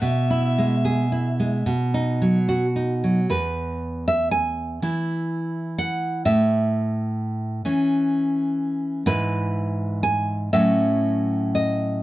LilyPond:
<<
  \new Staff \with { instrumentName = "Violin" } { \time 6/8 \key e \major \tempo 4. = 40 e''4. r4. | r2. | r2. | r2. | }
  \new Staff \with { instrumentName = "Nylon-string guitar" } { \time 6/8 \key e \major << { r2. | b'8. e''16 gis''4. fis''8 | e''2~ e''8 r8 | b'4 gis''8 e''4 dis''8 | } \\ { b,16 e'16 gis16 gis'16 e'16 gis16 b,16 dis'16 fis16 fis'16 dis'16 fis16 | e,4. <e e'>4. | a,4. <e cis'>4. | <gis, e e'>4. <a, fis cis'>4. | } >> }
>>